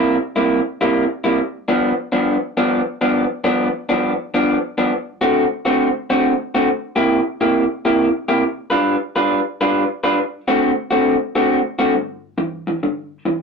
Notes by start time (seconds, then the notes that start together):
Already playing: C3 G3 A#3 E4
0.36 C3 G3 A#3 E4
0.81 C3 G3 A#3 E4
1.24 C3 G3 A#3 E4
1.68 G2 F3 B3 D4
2.12 G2 F3 B3 D4
2.57 G2 F3 B3 D4
3.01 G2 F3 B3 D4
3.44 G2 F3 B3 D4
3.89 G2 F3 B3 D4
4.34 G2 F3 B3 D4
4.78 G2 F3 B3 D4
5.21 D3 A3 C4 F#4
5.65 D3 A3 C4 F#4
6.10 D3 A3 C4 F#4
6.55 D3 A3 C4 F#4
6.96 C3 A#3 E4 G4
7.41 C3 A#3 E4 G4
7.85 C3 A#3 E4 G4
8.28 C3 A#3 E4 G4
8.70 G3 D4 F4 B4
9.16 G3 D4 F4 B4
9.61 G3 D4 F4 B4
10.04 G3 D4 F4 B4
10.48 D3 A3 C4 F#4
10.91 D3 A3 C4 F#4
11.35 D3 A3 C4 F#4
11.79 D3 A3 C4 F#4
11.94 G2 D3
12.38 G2 E3
12.67 G2 E3
12.83 G2 D3
13.25 G2 E3